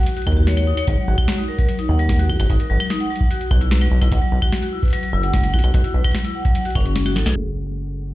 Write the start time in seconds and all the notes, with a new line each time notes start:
0.03 closed hi-hat
0.06 closed hi-hat
0.17 F#4, closed hi-hat
0.22 closed hi-hat
0.27 D#2, kick, closed hi-hat, claves
0.32 kick, closed hi-hat
0.37 F#4, kick
0.47 C#5, snare, closed hi-hat
0.57 C#5, closed hi-hat, claves
0.67 D#4
0.77 C#5, closed hi-hat, claves
0.87 G#1 F#3, kick, closed hi-hat
0.98 F#5
1.08 G#1 F#4
1.18 kick, claves
1.28 F#4, snare, closed hi-hat
1.38 D#4, closed hi-hat
1.48 A#4
1.58 F#3, kick, closed hi-hat
1.69 closed hi-hat
1.79 D#4, closed hi-hat
1.89 D#2 F#5
1.99 F#3, closed hi-hat
2.09 F#5, kick, snare, closed hi-hat
2.19 F#4, closed hi-hat
2.29 G#1, kick, claves
2.40 G#1 F#4, closed hi-hat, claves, shaker
2.50 G#1 D#4, kick, closed hi-hat
2.60 A#4, closed hi-hat
2.70 G#1 F#3
2.80 closed hi-hat, claves, shaker
2.90 D#4, snare, closed hi-hat
3.00 F#5, closed hi-hat
3.10 F#3
3.16 closed hi-hat
3.21 F#5, kick
3.31 F#4, closed hi-hat
3.41 closed hi-hat
3.51 B1 F#4, kick, claves
3.61 E4, closed hi-hat
3.71 B4, snare, closed hi-hat
3.81 F#3, closed hi-hat, claves
3.92 B1
4.02 B1 E4, closed hi-hat, claves
4.12 B1 F#5, kick, closed hi-hat
4.22 F#3
4.32 B1 F#5
4.42 F#4, kick, claves
4.52 snare, closed hi-hat
4.62 F#4, closed hi-hat
4.73 E4
4.83 B4, kick, closed hi-hat
4.85 closed hi-hat
4.88 closed hi-hat
4.90 closed hi-hat
4.93 F#3, closed hi-hat
5.03 closed hi-hat
5.13 F#1 E4
5.23 F#5, closed hi-hat
5.33 F#3, kick, snare, closed hi-hat
5.44 F#5, closed hi-hat
5.54 B1 F#4, kick, claves
5.59 closed hi-hat
5.64 B1, claves, shaker
5.74 B1 F#4, kick, closed hi-hat
5.84 E4, closed hi-hat
5.94 B1 B4
6.04 F#3, kick, closed hi-hat, claves, shaker
6.11 snare, closed hi-hat
6.15 closed hi-hat
6.18 closed hi-hat
6.25 E4, closed hi-hat
6.35 F#5
6.45 F#3, kick, closed hi-hat
6.55 F#5, closed hi-hat
6.65 F#4, closed hi-hat
6.70 closed hi-hat
6.75 F#1 C#4, kick, closed hi-hat, claves
6.80 closed hi-hat
6.85 C#4, closed hi-hat
6.96 snare, closed hi-hat
7.06 F#4, closed hi-hat, claves
7.16 A1 A4, snare
7.26 B1 G#4, snare, closed hi-hat, claves
7.36 F#1, closed hi-hat
7.46 closed hi-hat
7.67 closed hi-hat, claves
7.77 closed hi-hat
7.87 closed hi-hat
8.07 closed hi-hat